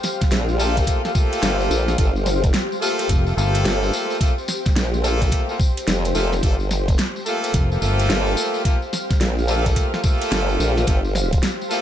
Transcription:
Already playing: ambient pad G4 C5 F5
0.03 snare, tambourine
0.21 kick, snare, closed hi-hat, tambourine
0.31 wobble bass A#1, snare, closed hi-hat, tambourine
0.49 tambourine
0.59 horn section A3 A#3 F4 G4 A4, tambourine
0.77 kick, closed hi-hat, tambourine
0.87 kick, closed hi-hat, tambourine
1.05 horn section A3 A#3 F4 G4 A4, snare, tambourine
1.15 horn section A3 A#3 F4 G4 A4, kick, tambourine
1.33 closed hi-hat, tambourine
1.42 wobble bass G1, snare, closed hi-hat, tambourine
1.60 tambourine
1.70 wobble bass A#1, tambourine
1.88 snare, tambourine
1.98 wobble bass G1, horn section A3 A#3 F4 G4 A4, kick, closed hi-hat, tambourine
2.16 tambourine
2.26 snare, tambourine
2.44 kick, closed hi-hat, tambourine
2.54 snare, closed hi-hat, tambourine
2.72 tambourine
2.82 horn section A3 A#3 F4 G4 A4, tambourine
2.99 closed hi-hat, tambourine
3.09 fingered electric bass F1, kick, closed hi-hat, tambourine
3.27 horn section A3 A#3 F4 G4 A4, tambourine
3.37 fingered electric bass G1, horn section A3 A#3 F4 G4 A4, tambourine
3.54 closed hi-hat, tambourine
3.65 wobble bass G1, snare, closed hi-hat, tambourine
3.83 tambourine
3.93 tambourine
4.10 tambourine
4.20 horn section A3 A#3 F4 G4 A4, kick, closed hi-hat, tambourine
4.38 tambourine
4.48 snare, tambourine
4.66 kick, snare, closed hi-hat, tambourine
4.76 wobble bass A#1, snare, closed hi-hat, tambourine
4.94 tambourine
5.04 horn section A3 A#3 F4 G4 A4, tambourine
5.22 kick, closed hi-hat, tambourine
5.32 kick, closed hi-hat, tambourine
5.49 horn section A3 A#3 F4 G4 A4, tambourine
5.60 kick, tambourine
5.77 closed hi-hat, tambourine
5.87 wobble bass F1, snare, closed hi-hat, tambourine
6.05 closed hi-hat, tambourine
6.15 wobble bass F1, horn section A3 A#3 F4 G4 A4, tambourine
6.32 snare, tambourine
6.43 wobble bass G1, horn section A3 A#3 F4 G4 A4, kick, closed hi-hat, tambourine
6.60 tambourine
6.71 snare, tambourine
6.88 kick, closed hi-hat, tambourine
6.98 snare, closed hi-hat, tambourine
7.16 tambourine
7.26 horn section A3 A#3 F4 G4 A4, tambourine
7.44 ambient pad F5, closed hi-hat, tambourine
7.54 fingered electric bass F1, kick, closed hi-hat, tambourine
7.72 horn section A3 A#3 F4 G4 A4, tambourine
7.81 fingered electric bass G1, horn section A3 A#3 F4 G4 A4, tambourine
7.99 closed hi-hat, tambourine
8.09 wobble bass G1, snare, closed hi-hat, tambourine
8.27 tambourine
8.37 tambourine
8.54 tambourine
8.65 horn section A3 A#3 F4 G4 A4, kick, closed hi-hat, tambourine
8.82 tambourine
8.93 snare, tambourine
9.11 kick, snare, closed hi-hat, tambourine
9.20 wobble bass A#1, snare, closed hi-hat, tambourine
9.38 tambourine
9.48 horn section A3 A#3 F4 G4 A4, tambourine
9.66 kick, closed hi-hat, tambourine
9.76 kick, closed hi-hat, tambourine
9.94 horn section A3 A#3 F4 G4 A4, snare, tambourine
10.04 horn section A3 A#3 F4 G4 A4, kick, tambourine
10.22 closed hi-hat, tambourine
10.32 wobble bass G1, snare, closed hi-hat, tambourine
10.49 tambourine
10.60 wobble bass A#1, tambourine
10.77 snare, tambourine
10.87 wobble bass G1, horn section A3 A#3 F4 G4 A4, kick, closed hi-hat, tambourine
11.05 tambourine
11.15 snare, tambourine
11.32 kick, closed hi-hat, tambourine
11.43 snare, closed hi-hat, tambourine
11.61 tambourine
11.70 horn section A3 A#3 F4 G4 A4, tambourine

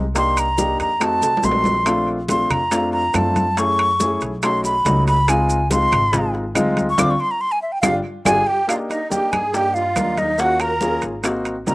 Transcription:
Already playing: upright bass C2
0.15 grand piano A#3 D4 D#4 G4, flute C6, high bongo, high conga, high timbale, maracas
0.37 flute A#5, high conga, high timbale, claves, maracas
0.57 grand piano A#3 D4 D#4 G4, high bongo, high conga, maracas
0.80 upright bass F2, flute A#5, high bongo, high conga, high timbale, maracas
1.00 grand piano A3 C4 D#4 F#4, flute A5, high bongo, high conga, high timbale, claves, maracas
1.22 upright bass C2, high bongo, high conga, high timbale, maracas
1.37 low timbale
1.43 upright bass A#1, grand piano A3 C4 D#4 F#4, flute C6, high bongo, low bongo, high conga, maracas
1.51 low timbale
1.64 high bongo, high conga, low timbale, maracas
1.85 grand piano A3 C4 D4 F4, high bongo, high conga, high timbale, claves, maracas
2.08 high conga
2.29 grand piano A3 C4 D4 F4, flute C6, high bongo, high conga, high timbale, maracas
2.50 upright bass F2, flute A#5, high bongo, high conga, low conga, high timbale, claves, maracas
2.71 grand piano A3 C4 D4 F4, high bongo, high conga, high timbale, maracas
2.93 flute A#5, high bongo, high conga
3.13 upright bass F#2, grand piano A3 C4 D4 F4, flute A5, high bongo, low bongo, high conga, high timbale, low timbale, claves, maracas
3.36 high bongo, high conga, high timbale, maracas
3.57 grand piano A3 C#4 E4 G#4, flute C#6, high bongo, high timbale, maracas
3.79 high conga, high timbale, claves
4.00 grand piano A3 C#4 E4 G#4, high bongo, high conga, maracas
4.21 upright bass B1, high bongo, high conga, high timbale, maracas
4.43 grand piano A3 C#4 D#4 F#4, flute C6, high bongo, high conga, high timbale, claves, maracas
4.64 flute B5, high bongo, high conga, maracas
4.85 upright bass C#2, grand piano A3 C#4 D#4 F#4, high bongo, low bongo, high conga, high timbale, low timbale, maracas
5.07 flute B5, high bongo, high timbale, maracas
5.28 grand piano G#3 C4 D#4 F4, flute G#5, high bongo, high conga, high timbale, claves, maracas
5.50 high conga, maracas
5.70 grand piano G#3 C4 D#4 F4, flute C6, high bongo, high conga, high timbale, maracas
5.92 upright bass G#1, high bongo, high conga, low conga, high timbale, claves, maracas
6.12 grand piano G#3 C4 D#4 F4, high bongo, high conga, low conga, high timbale, maracas
6.34 high bongo, high conga
6.55 upright bass D2, grand piano G#3 C4 D#4 F4, high bongo, low bongo, high conga, high timbale, claves, maracas
6.77 high bongo, high conga, high timbale, maracas
6.90 flute C#6
6.98 upright bass D2, grand piano C4 D4 F4, flute D6, high bongo, high conga, high timbale, claves, maracas
7.11 flute C#6
7.20 flute C6
7.31 flute A#5
7.41 flute C6
7.52 flute G#5
7.62 flute E5
7.72 flute G5
7.81 upright bass G1, grand piano D4 F4 G4, flute F5, high bongo, high conga, high timbale, claves, maracas
8.25 upright bass G1, grand piano D4 F4 G4, accordion G#4, flute G#5, high bongo, high conga, high timbale, claves, maracas
8.47 accordion G4, flute G5
8.67 grand piano A#3 D4 D#4 G4, accordion F4, flute F5, high bongo, high conga, high timbale, claves, maracas
8.90 accordion D#4, flute D#5, high bongo, high conga, high timbale, maracas
9.10 grand piano A#3 D4 D#4 G4, accordion G4, flute G5, high bongo, high conga, low timbale, maracas
9.32 upright bass G2, accordion G#4, flute G#5, high bongo, high conga, high timbale, claves, maracas
9.53 grand piano A#3 D4 D#4 G4, accordion G4, flute G5, high bongo, high conga, maracas
9.74 accordion F4, flute F5, high conga, maracas
9.96 upright bass D#2, grand piano A#3 D4 D#4 A#4, high bongo, low bongo, high conga, high timbale, low timbale, claves, maracas
10.17 accordion D#4, flute D#5, high bongo, high conga, high timbale, maracas
10.38 grand piano A#3 C#4 F4 F#4, accordion F#4, flute F#5, high bongo, high conga, maracas
10.60 accordion A#4, flute A#5, high bongo, high conga, high timbale, claves, maracas
10.80 grand piano A#3 C#4 F4 G#4, high bongo, high conga, low timbale, maracas
11.02 upright bass G#1, high bongo, high conga, high timbale, maracas
11.23 grand piano A#3 C4 D#4 F#4, high bongo, high conga, high timbale, claves, maracas
11.45 high conga, high timbale, maracas
11.67 upright bass C#2, grand piano A#3 C4 D#4 F#4, accordion A#4, flute A#5, high bongo, low bongo, high conga, low timbale, maracas

